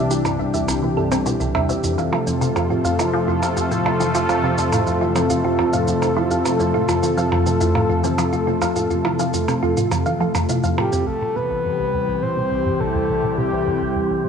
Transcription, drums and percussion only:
0.11 shaker
0.25 percussion blips, shaker
0.54 shaker
0.68 percussion blips, shaker
1.12 percussion blips, shaker
1.26 shaker
1.41 shaker
1.55 percussion blips
1.69 shaker
1.84 shaker
1.98 shaker
2.13 percussion blips
2.27 shaker
2.42 shaker
2.56 percussion blips, shaker
2.85 shaker
2.99 percussion blips, shaker
3.43 percussion blips, shaker
3.57 shaker
3.71 shaker
3.86 percussion blips
4.00 shaker
4.15 shaker
4.29 percussion blips, shaker
4.58 shaker
4.72 percussion blips, shaker
4.87 shaker
5.16 percussion blips, shaker
5.30 shaker
5.59 percussion blips
5.73 shaker
5.88 shaker
6.02 percussion blips, shaker
6.31 shaker
6.45 percussion blips, shaker
6.60 shaker
6.89 percussion blips, shaker
7.03 shaker
7.18 shaker
7.32 percussion blips
7.46 shaker
7.61 shaker
7.75 percussion blips
8.04 shaker
8.18 percussion blips, shaker
8.33 shaker
8.62 percussion blips, shaker
8.76 shaker
8.90 shaker
9.05 percussion blips
9.19 shaker
9.34 shaker
9.48 percussion blips, shaker
9.77 shaker
9.91 percussion blips, shaker
10.06 shaker
10.35 percussion blips, shaker
10.49 shaker
10.64 shaker
10.78 percussion blips
10.93 shaker

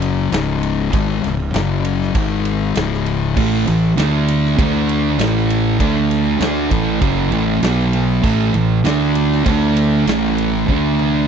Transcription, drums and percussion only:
0.02 ride
0.32 snare, ride
0.63 ride
0.93 kick, ride
1.24 snare, ride
1.54 snare, ride
1.85 ride
2.02 snare
2.15 kick, ride
2.45 ride
2.75 snare, ride
2.94 snare
3.06 ride
3.37 kick, crash
3.67 ride
3.98 snare, ride
4.28 ride
4.46 snare
4.59 kick, ride
4.89 ride
5.19 snare, ride
5.37 snare
5.50 ride
5.80 kick, ride
6.11 snare, ride
6.40 snare, ride
6.71 kick, ride
7.02 kick, ride
7.32 ride
7.63 snare, ride
7.79 snare
7.93 ride
8.24 kick, crash
8.54 ride
8.85 snare, ride
9.15 ride
9.32 snare
9.46 kick, ride
9.76 ride
10.07 snare, ride
10.25 snare
10.38 ride
10.68 kick
10.99 high tom

